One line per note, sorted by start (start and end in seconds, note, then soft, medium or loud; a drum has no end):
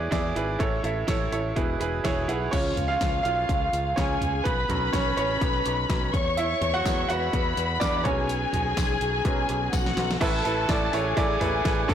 0.00 0.61 B2 medium
0.00 0.11 E4 medium
0.00 0.12 G#4 medium
0.00 0.37 B4 loud
0.00 0.60 C#5 loud
0.00 0.10 D5 medium
0.11 0.32 E2 medium
0.11 0.34 E4 medium
0.11 0.34 G#4 medium
0.11 0.34 D5 loud
0.11 kick medium
0.11 snare medium
0.11 closed hi-hat medium
0.36 0.56 G#1 medium
0.36 0.57 E4 medium
0.36 0.59 G#4 medium
0.36 0.59 B4 medium
0.36 closed hi-hat medium
0.59 0.80 A1 medium
0.59 1.28 A2 medium
0.59 1.28 E3 medium
0.59 0.82 E4 medium
0.59 0.82 A4 medium
0.59 0.83 C#5 loud
0.59 kick medium
0.59 closed hi-hat medium
0.83 1.04 A1 medium
0.83 1.06 E4 medium
0.83 1.06 A4 medium
0.83 1.07 E5 medium
0.83 closed hi-hat medium
1.07 1.28 A1 medium
1.07 1.30 E4 medium
1.07 1.31 A4 medium
1.07 1.31 C#5 loud
1.07 kick medium
1.07 snare medium
1.07 closed hi-hat medium
1.32 1.52 A1 medium
1.32 1.54 E4 medium
1.32 1.55 A4 medium
1.32 1.55 C#5 medium
1.32 closed hi-hat medium
1.56 1.76 E1 medium
1.56 2.25 B2 medium
1.56 1.78 E4 medium
1.56 1.79 G#4 medium
1.56 1.79 B4 medium
1.56 kick medium
1.56 closed hi-hat medium
1.80 2.00 E1 medium
1.80 2.02 E4 medium
1.80 2.03 G#4 medium
1.80 2.03 B4 medium
1.80 2.03 B5 medium
1.80 closed hi-hat medium
2.04 2.24 E1 medium
2.04 2.27 E4 medium
2.04 2.27 G#4 medium
2.04 2.27 C#5 loud
2.04 2.27 G#5 medium
2.04 kick medium
2.04 snare medium
2.04 closed hi-hat medium
2.28 2.48 B1 medium
2.28 2.51 E4 medium
2.28 2.51 G#4 medium
2.28 2.51 B4 medium
2.28 2.51 F#5 medium
2.28 closed hi-hat medium
2.51 2.72 C#2 medium
2.51 3.21 F3 soft
2.51 3.21 G#3 soft
2.51 2.88 C#4 medium
2.51 3.94 F4 medium
2.51 2.91 C#5 medium
2.51 3.94 F5 medium
2.51 kick medium
2.51 closed hi-hat medium
2.51 crash medium
2.76 2.96 C#2 medium
2.76 closed hi-hat medium
2.76 floor tom medium
2.88 3.22 F4 medium
2.88 3.22 F5 medium
3.01 3.21 C#2 medium
3.01 kick medium
3.01 snare medium
3.01 closed hi-hat medium
3.23 3.44 B1 medium
3.23 3.93 F4 medium
3.23 3.92 F5 medium
3.23 closed hi-hat medium
3.49 3.69 C#2 medium
3.49 kick medium
3.49 closed hi-hat medium
3.73 3.93 C#2 medium
3.73 closed hi-hat medium
3.96 4.17 C#2 medium
3.96 4.42 C#4 medium
3.96 4.44 G#4 medium
3.96 4.41 C#5 medium
3.96 4.45 G#5 medium
3.96 kick loud
3.96 snare loud
3.96 closed hi-hat medium
4.21 4.41 C#2 medium
4.21 closed hi-hat medium
4.21 floor tom medium
4.44 4.65 B1 medium
4.44 4.68 B3 medium
4.44 4.94 B4 medium
4.44 6.11 B4 medium
4.44 6.11 B5 medium
4.44 kick medium
4.44 closed hi-hat medium
4.69 4.89 B1 medium
4.69 5.37 F#3 medium
4.69 5.38 B3 soft
4.69 4.93 C#4 medium
4.69 closed hi-hat medium
4.69 floor tom medium
4.93 5.13 B1 medium
4.93 5.16 C#4 medium
4.93 5.16 C#5 medium
4.93 kick medium
4.93 snare loud
4.93 closed hi-hat medium
5.17 5.37 A1 medium
5.17 5.63 C#4 medium
5.17 5.62 C#5 medium
5.17 closed hi-hat medium
5.41 5.61 B1 medium
5.41 kick loud
5.41 closed hi-hat medium
5.66 5.85 B1 medium
5.66 closed hi-hat medium
5.90 6.09 B1 loud
5.90 kick loud
5.90 snare medium
5.90 closed hi-hat medium
6.14 6.53 E2 medium
6.14 7.08 C#5 medium
6.14 7.08 C#6 medium
6.14 kick medium
6.14 closed hi-hat medium
6.14 floor tom medium
6.37 6.73 E4 medium
6.37 6.76 E5 medium
6.37 closed hi-hat medium
6.61 6.81 E2 medium
6.61 closed hi-hat medium
6.61 floor tom medium
6.74 7.07 F#4 medium
6.74 7.07 F#5 loud
6.84 7.05 E2 loud
6.84 7.53 F#3 medium
6.84 7.54 G#3 soft
6.84 7.54 E4 medium
6.84 kick loud
6.84 snare loud
6.84 closed hi-hat medium
6.84 tambourine medium
7.09 7.29 E2 medium
7.09 7.78 F#4 medium
7.09 8.04 B4 medium
7.09 7.83 F#5 loud
7.09 8.04 B5 medium
7.09 closed hi-hat medium
7.33 7.53 E2 medium
7.33 kick loud
7.33 closed hi-hat medium
7.57 7.77 E2 medium
7.57 closed hi-hat medium
7.80 8.01 E2 medium
7.80 7.86 D4 medium
7.80 7.85 D5 medium
7.80 kick loud
7.80 snare loud
7.80 closed hi-hat medium
7.80 tambourine medium
7.97 8.04 D5 medium
8.04 8.45 B1 medium
8.04 9.24 F#3 medium
8.04 9.24 B3 soft
8.04 9.24 C#4 medium
8.04 9.70 G#4 medium
8.04 9.45 C#5 medium
8.04 9.70 G#5 medium
8.04 kick medium
8.04 closed hi-hat medium
8.04 floor tom medium
8.29 closed hi-hat medium
8.53 8.73 B1 medium
8.53 closed hi-hat medium
8.53 floor tom medium
8.77 8.97 B1 medium
8.77 kick loud
8.77 snare loud
8.77 closed hi-hat medium
8.77 tambourine medium
9.01 9.21 B1 medium
9.01 closed hi-hat medium
9.25 9.45 B1 loud
9.25 9.47 F#3 soft
9.25 9.47 B3 soft
9.25 9.47 C#4 soft
9.25 kick loud
9.25 closed hi-hat medium
9.49 9.69 B1 medium
9.49 closed hi-hat medium
9.73 9.93 B1 loud
9.73 10.20 F#4 medium
9.73 10.20 F#5 medium
9.73 kick loud
9.73 snare medium
9.73 closed hi-hat medium
9.73 tambourine medium
9.86 snare medium
9.97 10.17 B1 loud
9.97 snare medium
9.97 closed hi-hat medium
10.11 snare medium
10.21 10.41 A1 loud
10.21 10.89 A2 medium
10.21 10.89 E3 medium
10.21 10.43 E4 loud
10.21 10.44 A4 medium
10.21 10.92 A4 medium
10.21 10.44 B4 loud
10.21 10.92 A5 medium
10.21 kick loud
10.21 open hi-hat medium
10.21 crash medium
10.45 10.65 A1 medium
10.45 10.67 E4 medium
10.45 10.68 A4 medium
10.45 10.68 B4 loud
10.45 open hi-hat medium
10.69 10.89 A1 loud
10.69 10.92 E4 medium
10.69 10.92 A4 medium
10.69 10.92 D5 medium
10.69 kick loud
10.69 snare loud
10.69 open hi-hat medium
10.93 11.13 A1 medium
10.93 11.15 E4 medium
10.93 11.87 G#4 medium
10.93 11.16 A4 medium
10.93 11.16 C#5 loud
10.93 11.87 G#5 medium
10.93 open hi-hat medium
11.17 11.37 A1 loud
11.17 11.39 E4 loud
11.17 11.39 A4 loud
11.17 11.40 D5 loud
11.17 kick loud
11.17 open hi-hat medium
11.40 11.61 A1 medium
11.40 11.63 E4 medium
11.40 11.63 A4 medium
11.40 11.64 B4 medium
11.40 floor tom medium
11.40 open hi-hat medium
11.64 11.85 A1 medium
11.64 11.87 E4 medium
11.64 11.87 A4 medium
11.64 11.88 B4 medium
11.64 kick loud
11.64 snare loud
11.64 open hi-hat medium
11.88 11.94 D2 medium
11.88 11.94 A2 medium
11.88 11.94 D4 medium
11.88 11.94 F#4 medium
11.88 11.94 A4 loud
11.88 11.94 A4 medium
11.88 11.94 A5 medium
11.88 kick loud
11.88 floor tom medium
11.88 open hi-hat medium